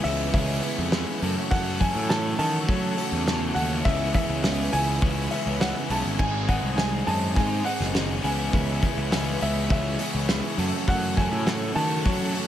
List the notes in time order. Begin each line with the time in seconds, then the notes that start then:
Already playing: B4 E5 G#5 C#6
0.04 C#2 C#3 E3 G#3 B3 C#4 E4 G#4 E5, open hi-hat
0.33 C#2 C#3 E3 G#3 B3 C#4 E4 G#4 E5, kick, open hi-hat
0.63 C#3 E3 G#3 B3 C#4 E4 G#4, open hi-hat
0.78 F2
0.92 C#3 E3 G#3 B3 C#4 E4 G#4, snare, open hi-hat
1.21 F#2 C#3 E3 F#3 A3 C#4 F#4 A4 F#5, open hi-hat
1.50 F#2 C#3 E3 F#3 A3 C#4 F#4 A4 F#5, kick, open hi-hat
1.78 F#2 C#3 E3 F#3 A3 C#4 F#4 A4 G#5, kick, open hi-hat
1.95 A2
2.08 F#2 C#3 E3 F#3 A3 C#4 F#4 A4 A5, snare, open hi-hat
2.37 F#2 C#3 D#3 E3 F#3 A3 C#4 F#4 A4 A5, open hi-hat
2.66 F#2 C#3 E3 F#3 A3 C#4 F#4 A4, kick, open hi-hat
2.97 F#2 C#3 E3 F#3 A3 C#4 F#4 A4, open hi-hat
3.12 E2
3.26 F#2 C#3 E3 F#3 A3 C#4 F#4 A4, snare, open hi-hat
3.54 D#2 F#2 C#3 E3 F#3 A3 C#4 F#4 A4 F#5, open hi-hat
3.84 C#2 C#3 E3 G#3 B3 C#4 E4 G#4 B4 E5 G#5, kick, open hi-hat
4.13 C#3 E3 G#3 B3 C#4 E4 G#4 E5, kick, open hi-hat
4.29 C#2
4.42 C#3 E3 G#3 B3 C#4 E4 G#4, snare, open hi-hat
4.72 C#2 C#3 E3 G#3 B3 C#4 E4 G#4 G#5, open hi-hat
5.01 C#2 C#3 E3 G#3 B3 C#4 E4 G#4, kick, open hi-hat
5.30 C#3 E3 G#3 B3 C#4 E4 G#4 E5, open hi-hat
5.46 C#2
5.59 C#3 E3 G#3 B3 C#4 E4 G#4 F#5, snare, open hi-hat
5.88 B1 C#3 E3 G#3 B3 C#4 E4 G#4 A5, open hi-hat
6.05 G#1
6.17 G#1 G#2 D#3 G#3 C4 D#4 G#4 C5 D#5 G#5, kick, crash
6.47 G#2 D#3 G#3 C4 D#4 G#4 F#5, kick, open hi-hat
6.63 C2
6.77 G#2 D#3 G#3 C4 D#4 G#4 G#5, snare, open hi-hat
7.07 F#2 G#2 D#3 G#3 C4 D#4 G#4 A5, open hi-hat
7.35 G#2 D#3 G#3 C4 D#4 G#4 G#5, kick, open hi-hat
7.64 G#2 D#3 G#3 C4 D#4 G#4 F#5, open hi-hat
7.80 F#1, snare
7.94 G#2 D#3 G#3 C4 D#4 G#4, snare, open hi-hat
8.23 C#2 C#3 E3 G#3 B3 C#4 E4 G#4 B4 E5 G#5 C#6, open hi-hat
8.52 C#2 C#3 E3 G#3 B3 C#4 E4 G#4, kick, open hi-hat
8.82 C#3 E3 G#3 B3 C#4 E4 G#4, kick, open hi-hat
8.97 C#2
9.11 C#3 E3 G#3 B3 C#4 E4 G#4, snare, open hi-hat
9.41 C#2 C#3 E3 G#3 B3 C#4 E4 G#4 E5, open hi-hat
9.70 C#2 C#3 E3 G#3 B3 C#4 E4 G#4 E5, kick, open hi-hat
9.99 C#3 E3 G#3 B3 C#4 E4 G#4, open hi-hat
10.14 C#2
10.29 C#3 E3 G#3 B3 C#4 E4 G#4, snare, open hi-hat
10.57 F#2 C#3 E3 F#3 A3 C#4 F#4 A4 F#5, open hi-hat
10.87 F#2 C#3 E3 F#3 A3 C#4 F#4 A4 F#5, kick, open hi-hat
11.16 F#2 C#3 E3 F#3 A3 C#4 F#4 A4 G#5, kick, open hi-hat
11.32 A2
11.46 F#2 C#3 E3 F#3 A3 C#4 F#4 A4, snare, open hi-hat
11.75 F#2 C#3 D#3 E3 F#3 A3 C#4 F#4 A4 A5, open hi-hat
12.05 F#2 C#3 E3 F#3 A3 C#4 F#4 A4, kick, open hi-hat
12.34 F#2 C#3 E3 F#3 A3 C#4 F#4 A4, open hi-hat